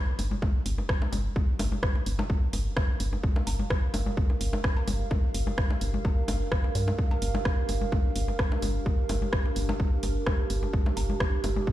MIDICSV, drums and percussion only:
0, 0, Header, 1, 2, 480
1, 0, Start_track
1, 0, Key_signature, -2, "minor"
1, 0, Tempo, 468750
1, 1393, Time_signature, 4, 2, 24, 8
1, 12003, End_track
2, 0, Start_track
2, 0, Title_t, "Drums"
2, 191, Note_on_c, 9, 61, 43
2, 193, Note_on_c, 9, 46, 93
2, 293, Note_off_c, 9, 61, 0
2, 295, Note_off_c, 9, 46, 0
2, 320, Note_on_c, 9, 64, 93
2, 422, Note_off_c, 9, 64, 0
2, 432, Note_on_c, 9, 36, 113
2, 432, Note_on_c, 9, 61, 80
2, 535, Note_off_c, 9, 36, 0
2, 535, Note_off_c, 9, 61, 0
2, 673, Note_on_c, 9, 46, 91
2, 775, Note_off_c, 9, 46, 0
2, 801, Note_on_c, 9, 61, 46
2, 903, Note_off_c, 9, 61, 0
2, 911, Note_on_c, 9, 56, 65
2, 912, Note_on_c, 9, 36, 121
2, 912, Note_on_c, 9, 37, 89
2, 1014, Note_off_c, 9, 56, 0
2, 1015, Note_off_c, 9, 36, 0
2, 1015, Note_off_c, 9, 37, 0
2, 1041, Note_on_c, 9, 61, 77
2, 1143, Note_off_c, 9, 61, 0
2, 1151, Note_on_c, 9, 64, 87
2, 1153, Note_on_c, 9, 46, 91
2, 1254, Note_off_c, 9, 64, 0
2, 1255, Note_off_c, 9, 46, 0
2, 1392, Note_on_c, 9, 36, 119
2, 1392, Note_on_c, 9, 61, 46
2, 1494, Note_off_c, 9, 61, 0
2, 1495, Note_off_c, 9, 36, 0
2, 1632, Note_on_c, 9, 46, 90
2, 1632, Note_on_c, 9, 61, 83
2, 1734, Note_off_c, 9, 61, 0
2, 1735, Note_off_c, 9, 46, 0
2, 1760, Note_on_c, 9, 64, 83
2, 1862, Note_off_c, 9, 64, 0
2, 1872, Note_on_c, 9, 36, 122
2, 1872, Note_on_c, 9, 37, 94
2, 1974, Note_off_c, 9, 37, 0
2, 1975, Note_off_c, 9, 36, 0
2, 2000, Note_on_c, 9, 61, 45
2, 2102, Note_off_c, 9, 61, 0
2, 2113, Note_on_c, 9, 46, 92
2, 2215, Note_off_c, 9, 46, 0
2, 2242, Note_on_c, 9, 56, 62
2, 2242, Note_on_c, 9, 61, 76
2, 2242, Note_on_c, 9, 64, 92
2, 2344, Note_off_c, 9, 56, 0
2, 2344, Note_off_c, 9, 61, 0
2, 2344, Note_off_c, 9, 64, 0
2, 2352, Note_on_c, 9, 36, 118
2, 2455, Note_off_c, 9, 36, 0
2, 2592, Note_on_c, 9, 61, 45
2, 2593, Note_on_c, 9, 46, 91
2, 2694, Note_off_c, 9, 61, 0
2, 2695, Note_off_c, 9, 46, 0
2, 2832, Note_on_c, 9, 37, 95
2, 2832, Note_on_c, 9, 61, 84
2, 2833, Note_on_c, 9, 36, 124
2, 2934, Note_off_c, 9, 61, 0
2, 2935, Note_off_c, 9, 36, 0
2, 2935, Note_off_c, 9, 37, 0
2, 3072, Note_on_c, 9, 46, 93
2, 3175, Note_off_c, 9, 46, 0
2, 3202, Note_on_c, 9, 61, 44
2, 3304, Note_off_c, 9, 61, 0
2, 3313, Note_on_c, 9, 36, 126
2, 3415, Note_off_c, 9, 36, 0
2, 3441, Note_on_c, 9, 61, 83
2, 3543, Note_off_c, 9, 61, 0
2, 3552, Note_on_c, 9, 56, 63
2, 3553, Note_on_c, 9, 46, 97
2, 3655, Note_off_c, 9, 46, 0
2, 3655, Note_off_c, 9, 56, 0
2, 3680, Note_on_c, 9, 64, 80
2, 3782, Note_off_c, 9, 64, 0
2, 3791, Note_on_c, 9, 61, 45
2, 3793, Note_on_c, 9, 36, 126
2, 3793, Note_on_c, 9, 37, 90
2, 3894, Note_off_c, 9, 61, 0
2, 3895, Note_off_c, 9, 36, 0
2, 3896, Note_off_c, 9, 37, 0
2, 4032, Note_on_c, 9, 61, 80
2, 4033, Note_on_c, 9, 46, 94
2, 4134, Note_off_c, 9, 61, 0
2, 4136, Note_off_c, 9, 46, 0
2, 4161, Note_on_c, 9, 64, 90
2, 4263, Note_off_c, 9, 64, 0
2, 4273, Note_on_c, 9, 36, 124
2, 4375, Note_off_c, 9, 36, 0
2, 4401, Note_on_c, 9, 61, 47
2, 4504, Note_off_c, 9, 61, 0
2, 4513, Note_on_c, 9, 46, 93
2, 4616, Note_off_c, 9, 46, 0
2, 4639, Note_on_c, 9, 61, 82
2, 4742, Note_off_c, 9, 61, 0
2, 4752, Note_on_c, 9, 37, 92
2, 4753, Note_on_c, 9, 36, 126
2, 4854, Note_off_c, 9, 37, 0
2, 4855, Note_off_c, 9, 36, 0
2, 4880, Note_on_c, 9, 56, 66
2, 4983, Note_off_c, 9, 56, 0
2, 4992, Note_on_c, 9, 46, 100
2, 4992, Note_on_c, 9, 61, 46
2, 4992, Note_on_c, 9, 64, 86
2, 5095, Note_off_c, 9, 46, 0
2, 5095, Note_off_c, 9, 61, 0
2, 5095, Note_off_c, 9, 64, 0
2, 5231, Note_on_c, 9, 61, 79
2, 5233, Note_on_c, 9, 36, 121
2, 5333, Note_off_c, 9, 61, 0
2, 5335, Note_off_c, 9, 36, 0
2, 5473, Note_on_c, 9, 46, 94
2, 5575, Note_off_c, 9, 46, 0
2, 5600, Note_on_c, 9, 61, 45
2, 5600, Note_on_c, 9, 64, 77
2, 5702, Note_off_c, 9, 61, 0
2, 5702, Note_off_c, 9, 64, 0
2, 5712, Note_on_c, 9, 37, 89
2, 5713, Note_on_c, 9, 36, 124
2, 5814, Note_off_c, 9, 37, 0
2, 5815, Note_off_c, 9, 36, 0
2, 5840, Note_on_c, 9, 61, 80
2, 5942, Note_off_c, 9, 61, 0
2, 5952, Note_on_c, 9, 46, 90
2, 6055, Note_off_c, 9, 46, 0
2, 6082, Note_on_c, 9, 64, 86
2, 6184, Note_off_c, 9, 64, 0
2, 6193, Note_on_c, 9, 36, 118
2, 6193, Note_on_c, 9, 56, 64
2, 6193, Note_on_c, 9, 61, 46
2, 6295, Note_off_c, 9, 36, 0
2, 6296, Note_off_c, 9, 56, 0
2, 6296, Note_off_c, 9, 61, 0
2, 6431, Note_on_c, 9, 61, 79
2, 6433, Note_on_c, 9, 46, 91
2, 6533, Note_off_c, 9, 61, 0
2, 6535, Note_off_c, 9, 46, 0
2, 6673, Note_on_c, 9, 36, 121
2, 6673, Note_on_c, 9, 37, 89
2, 6775, Note_off_c, 9, 36, 0
2, 6776, Note_off_c, 9, 37, 0
2, 6801, Note_on_c, 9, 61, 47
2, 6904, Note_off_c, 9, 61, 0
2, 6913, Note_on_c, 9, 46, 93
2, 7016, Note_off_c, 9, 46, 0
2, 7042, Note_on_c, 9, 61, 79
2, 7144, Note_off_c, 9, 61, 0
2, 7153, Note_on_c, 9, 36, 115
2, 7255, Note_off_c, 9, 36, 0
2, 7283, Note_on_c, 9, 56, 69
2, 7283, Note_on_c, 9, 61, 45
2, 7385, Note_off_c, 9, 56, 0
2, 7385, Note_off_c, 9, 61, 0
2, 7393, Note_on_c, 9, 46, 93
2, 7495, Note_off_c, 9, 46, 0
2, 7522, Note_on_c, 9, 61, 77
2, 7522, Note_on_c, 9, 64, 74
2, 7625, Note_off_c, 9, 61, 0
2, 7625, Note_off_c, 9, 64, 0
2, 7632, Note_on_c, 9, 37, 85
2, 7633, Note_on_c, 9, 36, 118
2, 7734, Note_off_c, 9, 37, 0
2, 7735, Note_off_c, 9, 36, 0
2, 7872, Note_on_c, 9, 46, 91
2, 7873, Note_on_c, 9, 61, 41
2, 7975, Note_off_c, 9, 46, 0
2, 7975, Note_off_c, 9, 61, 0
2, 8001, Note_on_c, 9, 64, 84
2, 8104, Note_off_c, 9, 64, 0
2, 8112, Note_on_c, 9, 61, 76
2, 8113, Note_on_c, 9, 36, 119
2, 8214, Note_off_c, 9, 61, 0
2, 8215, Note_off_c, 9, 36, 0
2, 8352, Note_on_c, 9, 46, 89
2, 8454, Note_off_c, 9, 46, 0
2, 8481, Note_on_c, 9, 61, 46
2, 8583, Note_off_c, 9, 61, 0
2, 8591, Note_on_c, 9, 37, 88
2, 8592, Note_on_c, 9, 56, 63
2, 8593, Note_on_c, 9, 36, 118
2, 8694, Note_off_c, 9, 37, 0
2, 8695, Note_off_c, 9, 36, 0
2, 8695, Note_off_c, 9, 56, 0
2, 8722, Note_on_c, 9, 61, 82
2, 8824, Note_off_c, 9, 61, 0
2, 8831, Note_on_c, 9, 46, 94
2, 8832, Note_on_c, 9, 64, 80
2, 8933, Note_off_c, 9, 46, 0
2, 8934, Note_off_c, 9, 64, 0
2, 9072, Note_on_c, 9, 36, 109
2, 9072, Note_on_c, 9, 61, 43
2, 9175, Note_off_c, 9, 36, 0
2, 9175, Note_off_c, 9, 61, 0
2, 9311, Note_on_c, 9, 46, 86
2, 9312, Note_on_c, 9, 61, 76
2, 9413, Note_off_c, 9, 46, 0
2, 9415, Note_off_c, 9, 61, 0
2, 9441, Note_on_c, 9, 64, 74
2, 9543, Note_off_c, 9, 64, 0
2, 9550, Note_on_c, 9, 37, 85
2, 9552, Note_on_c, 9, 36, 114
2, 9653, Note_off_c, 9, 37, 0
2, 9655, Note_off_c, 9, 36, 0
2, 9681, Note_on_c, 9, 61, 44
2, 9784, Note_off_c, 9, 61, 0
2, 9790, Note_on_c, 9, 46, 86
2, 9893, Note_off_c, 9, 46, 0
2, 9922, Note_on_c, 9, 56, 66
2, 9922, Note_on_c, 9, 61, 75
2, 9922, Note_on_c, 9, 64, 85
2, 10025, Note_off_c, 9, 56, 0
2, 10025, Note_off_c, 9, 61, 0
2, 10025, Note_off_c, 9, 64, 0
2, 10032, Note_on_c, 9, 36, 113
2, 10135, Note_off_c, 9, 36, 0
2, 10270, Note_on_c, 9, 46, 87
2, 10272, Note_on_c, 9, 61, 43
2, 10373, Note_off_c, 9, 46, 0
2, 10375, Note_off_c, 9, 61, 0
2, 10511, Note_on_c, 9, 37, 83
2, 10512, Note_on_c, 9, 36, 114
2, 10512, Note_on_c, 9, 61, 77
2, 10614, Note_off_c, 9, 36, 0
2, 10614, Note_off_c, 9, 37, 0
2, 10614, Note_off_c, 9, 61, 0
2, 10752, Note_on_c, 9, 46, 89
2, 10854, Note_off_c, 9, 46, 0
2, 10882, Note_on_c, 9, 61, 42
2, 10984, Note_off_c, 9, 61, 0
2, 10992, Note_on_c, 9, 36, 112
2, 11095, Note_off_c, 9, 36, 0
2, 11122, Note_on_c, 9, 61, 75
2, 11225, Note_off_c, 9, 61, 0
2, 11232, Note_on_c, 9, 46, 84
2, 11232, Note_on_c, 9, 56, 71
2, 11334, Note_off_c, 9, 46, 0
2, 11335, Note_off_c, 9, 56, 0
2, 11362, Note_on_c, 9, 64, 76
2, 11464, Note_off_c, 9, 64, 0
2, 11472, Note_on_c, 9, 36, 113
2, 11472, Note_on_c, 9, 37, 90
2, 11473, Note_on_c, 9, 61, 41
2, 11574, Note_off_c, 9, 36, 0
2, 11574, Note_off_c, 9, 37, 0
2, 11575, Note_off_c, 9, 61, 0
2, 11712, Note_on_c, 9, 46, 87
2, 11713, Note_on_c, 9, 61, 70
2, 11815, Note_off_c, 9, 46, 0
2, 11816, Note_off_c, 9, 61, 0
2, 11842, Note_on_c, 9, 64, 90
2, 11944, Note_off_c, 9, 64, 0
2, 11952, Note_on_c, 9, 36, 110
2, 12003, Note_off_c, 9, 36, 0
2, 12003, End_track
0, 0, End_of_file